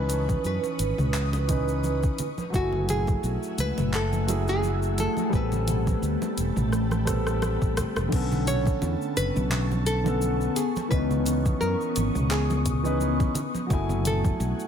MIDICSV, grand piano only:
0, 0, Header, 1, 2, 480
1, 0, Start_track
1, 0, Tempo, 697674
1, 1748, Time_signature, 4, 2, 24, 8
1, 10096, End_track
2, 0, Start_track
2, 0, Title_t, "Grand piano"
2, 0, Program_c, 0, 0
2, 0, Control_c, 0, 64, 127
2, 0, Note_on_c, 0, 52, 81
2, 0, Note_on_c, 0, 61, 73
2, 0, Note_on_c, 0, 63, 68
2, 0, Note_on_c, 0, 71, 88
2, 990, Note_off_c, 0, 52, 0
2, 997, Note_off_c, 0, 61, 0
2, 1006, Note_off_c, 0, 63, 0
2, 1013, Note_off_c, 0, 71, 0
2, 1015, Note_on_c, 0, 52, 82
2, 1022, Note_on_c, 0, 61, 78
2, 1030, Note_on_c, 0, 63, 73
2, 1039, Note_on_c, 0, 71, 88
2, 1206, Note_off_c, 0, 52, 0
2, 1209, Note_off_c, 0, 61, 0
2, 1213, Note_off_c, 0, 63, 0
2, 1218, Note_off_c, 0, 71, 0
2, 1516, Control_c, 0, 64, 0
2, 1633, Control_c, 0, 64, 127
2, 1721, Note_on_c, 0, 54, 76
2, 1737, Note_on_c, 0, 57, 73
2, 1752, Note_on_c, 0, 64, 69
2, 1767, Note_on_c, 0, 80, 87
2, 2908, Note_off_c, 0, 54, 0
2, 2916, Note_off_c, 0, 57, 0
2, 2924, Note_off_c, 0, 64, 0
2, 2931, Note_off_c, 0, 80, 0
2, 2934, Note_on_c, 0, 54, 84
2, 2944, Note_on_c, 0, 57, 75
2, 2950, Note_on_c, 0, 64, 77
2, 2959, Note_on_c, 0, 68, 91
2, 3126, Note_off_c, 0, 54, 0
2, 3130, Note_off_c, 0, 57, 0
2, 3133, Note_off_c, 0, 64, 0
2, 3138, Note_off_c, 0, 68, 0
2, 3642, Note_on_c, 0, 55, 83
2, 3659, Note_on_c, 0, 59, 75
2, 3674, Note_on_c, 0, 60, 70
2, 3677, Control_c, 0, 64, 0
2, 3690, Note_on_c, 0, 69, 90
2, 3802, Control_c, 0, 64, 127
2, 4829, Note_off_c, 0, 55, 0
2, 4837, Note_off_c, 0, 59, 0
2, 4845, Note_off_c, 0, 60, 0
2, 4852, Note_on_c, 0, 55, 78
2, 4853, Note_off_c, 0, 69, 0
2, 4861, Note_on_c, 0, 59, 74
2, 4869, Note_on_c, 0, 60, 75
2, 4876, Note_on_c, 0, 69, 96
2, 5044, Note_off_c, 0, 55, 0
2, 5049, Note_off_c, 0, 59, 0
2, 5053, Note_off_c, 0, 60, 0
2, 5057, Note_off_c, 0, 69, 0
2, 5564, Note_on_c, 0, 50, 84
2, 5580, Note_on_c, 0, 59, 71
2, 5596, Note_on_c, 0, 61, 73
2, 5597, Control_c, 0, 64, 0
2, 5612, Note_on_c, 0, 69, 89
2, 5719, Control_c, 0, 64, 127
2, 6750, Note_off_c, 0, 50, 0
2, 6758, Note_off_c, 0, 59, 0
2, 6766, Note_off_c, 0, 61, 0
2, 6774, Note_off_c, 0, 69, 0
2, 6907, Note_on_c, 0, 50, 83
2, 6915, Note_on_c, 0, 59, 75
2, 6923, Note_on_c, 0, 61, 76
2, 6931, Note_on_c, 0, 69, 95
2, 7248, Note_off_c, 0, 50, 0
2, 7252, Note_off_c, 0, 59, 0
2, 7256, Note_off_c, 0, 61, 0
2, 7260, Note_off_c, 0, 69, 0
2, 7277, Control_c, 0, 64, 0
2, 7392, Control_c, 0, 64, 127
2, 7487, Note_on_c, 0, 52, 82
2, 7503, Note_on_c, 0, 61, 77
2, 7519, Note_on_c, 0, 63, 76
2, 7534, Note_on_c, 0, 59, 87
2, 8671, Note_off_c, 0, 52, 0
2, 8679, Note_off_c, 0, 61, 0
2, 8687, Note_off_c, 0, 63, 0
2, 8695, Note_off_c, 0, 59, 0
2, 8826, Note_on_c, 0, 52, 79
2, 8835, Note_on_c, 0, 61, 78
2, 8842, Note_on_c, 0, 63, 77
2, 8850, Note_on_c, 0, 71, 88
2, 9167, Note_off_c, 0, 52, 0
2, 9172, Note_off_c, 0, 61, 0
2, 9176, Note_off_c, 0, 63, 0
2, 9179, Note_off_c, 0, 71, 0
2, 9196, Control_c, 0, 64, 0
2, 9297, Control_c, 0, 64, 127
2, 9402, Note_on_c, 0, 54, 82
2, 9419, Note_on_c, 0, 57, 74
2, 9434, Note_on_c, 0, 64, 81
2, 9450, Note_on_c, 0, 80, 90
2, 10096, Note_off_c, 0, 54, 0
2, 10096, Note_off_c, 0, 57, 0
2, 10096, Note_off_c, 0, 64, 0
2, 10096, Note_off_c, 0, 80, 0
2, 10096, End_track
0, 0, End_of_file